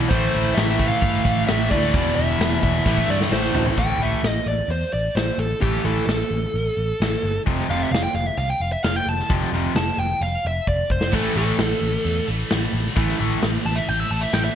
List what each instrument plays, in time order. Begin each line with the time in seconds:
Already playing: distorted electric guitar E2 B2 E3
0.09 picked electric bass A1, distorted electric guitar A2 E3 A3, lead electric guitar C5, kick, open hi-hat
0.35 picked electric bass A1
0.54 picked electric bass A1, lead electric guitar E5, snare, open hi-hat
0.78 distorted electric guitar A2 E3 A3, kick
0.88 lead electric guitar F5
1.02 picked electric bass G1, kick, open hi-hat
1.25 picked electric bass A1, kick
1.47 picked electric bass A1, distorted electric guitar A2 E3 A3, lead electric guitar E5, snare, open hi-hat
1.71 picked electric bass D2, distorted electric guitar A2 E3 A3, lead electric guitar D5, kick
1.84 snare
1.93 picked electric bass E1, distorted electric guitar E2 B2 E3, kick, open hi-hat
2.16 picked electric bass E1, lead electric guitar E5
2.39 picked electric bass E1, snare, open hi-hat
2.63 picked electric bass E1, distorted electric guitar E2 B2 E3, lead electric guitar E5, kick
2.86 picked electric bass A1, distorted electric guitar A2 E3 A3, kick, snare
2.97 kick
3.08 picked electric bass G2, lead electric guitar D5
3.21 snare
3.31 picked electric bass A1, lead electric guitar C5, snare
3.54 picked electric bass A1, distorted electric guitar A2 E3 A3, floor tom
3.66 floor tom
3.78 picked electric bass A1, distorted electric guitar A2 E3 A3, lead electric guitar G5, kick, open hi-hat
3.98 picked electric bass A1, distorted electric guitar A2 E3 A3
4.03 lead electric guitar E5
4.23 picked electric bass A1, lead electric guitar D#5, snare, open hi-hat
4.46 picked electric bass A1, lead electric guitar D5
4.68 picked electric bass E2, lead electric guitar C5, open hi-hat
4.93 picked electric bass A1, lead electric guitar D5
5.15 picked electric bass A1, lead electric guitar C5, snare, open hi-hat
5.38 picked electric bass A1, lead electric guitar A4
5.61 picked electric bass A1, distorted electric guitar A2 E3 A3, lead electric guitar G4, kick, open hi-hat
5.75 snare
5.85 picked electric bass A1, distorted electric guitar A2 E3 A3, lead electric guitar A4
6.06 picked electric bass A1, lead electric guitar A4, snare, open hi-hat
6.31 picked electric bass A1
6.54 picked electric bass A1, open hi-hat
6.77 picked electric bass A1
7.00 picked electric bass A1, snare, open hi-hat
7.23 picked electric bass G1
7.46 picked electric bass F1, distorted electric guitar F2 C3 F3, kick, open hi-hat
7.60 snare
7.69 picked electric bass F1, distorted electric guitar F2 C3 F3, lead electric guitar F5
7.82 lead electric guitar E5
7.91 picked electric bass F1, lead electric guitar F5, snare, open hi-hat
8.03 lead electric guitar G5
8.14 picked electric bass F1, lead electric guitar F5
8.26 lead electric guitar E5
8.38 picked electric bass C2, lead electric guitar F5, open hi-hat
8.50 lead electric guitar G5
8.60 picked electric bass F1, lead electric guitar F5
8.72 lead electric guitar E5
8.83 picked electric bass F1, lead electric guitar F5, snare, open hi-hat
8.96 lead electric guitar G5
9.07 picked electric bass F1, lead electric guitar A5
9.20 snare
9.29 picked electric bass F1, distorted electric guitar F2 C3 F3, kick, open hi-hat
9.42 snare
9.53 picked electric bass F1, distorted electric guitar F2 C3 F3
9.75 picked electric bass F1, lead electric guitar A5, snare, open hi-hat
9.98 picked electric bass F1, lead electric guitar G5
10.21 picked electric bass F1, lead electric guitar F5, open hi-hat
10.45 picked electric bass F1, lead electric guitar E5
10.67 picked electric bass F1, lead electric guitar D5, kick
10.90 picked electric bass F1, lead electric guitar C5, kick
11.01 snare
11.12 picked electric bass A1, distorted electric guitar A2 E3 A3, lead electric guitar A4, kick, crash
11.17 distorted electric guitar A3
11.36 picked electric bass A1, distorted electric guitar A2 E3 A3, lead electric guitar A4
11.58 picked electric bass A1, snare, open hi-hat
11.82 picked electric bass A1
12.04 picked electric bass E2, open hi-hat
12.28 picked electric bass A1, distorted electric guitar A2 E3 A3
12.50 picked electric bass A1, distorted electric guitar A2 E3 A3, snare, open hi-hat
12.73 picked electric bass A1
12.86 snare
12.95 picked electric bass A1, distorted electric guitar A2 E3 A3, kick, open hi-hat
13.09 snare
13.20 picked electric bass A1, distorted electric guitar A2 E3 A3
13.42 picked electric bass A1, snare, open hi-hat
13.65 picked electric bass A1, lead electric guitar A5
13.76 lead electric guitar E5
13.88 picked electric bass A1, lead electric guitar G5, open hi-hat
14.00 lead electric guitar E5
14.08 picked electric bass A1, distorted electric guitar A2 E3 A3, lead electric guitar A5
14.21 lead electric guitar E5
14.31 picked electric bass A1, distorted electric guitar A2 E3 A3, lead electric guitar G5, snare, open hi-hat
14.44 lead electric guitar E5